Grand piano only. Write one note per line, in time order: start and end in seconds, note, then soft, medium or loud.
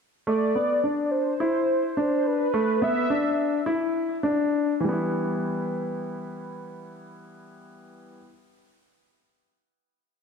0.27 0.51 A3 medium
0.55 0.80 B3 medium
0.84 1.32 D4 medium
1.40 1.89 E4 medium
1.97 2.45 D4 medium
2.54 2.78 A3 medium
2.82 3.06 B3 medium
3.10 3.59 D4 medium
3.66 4.15 E4 medium
4.23 4.72 D4 medium
4.80 8.16 E3 medium
4.84 8.20 G3 medium
4.89 8.25 B3 medium
4.89 8.28 E4 medium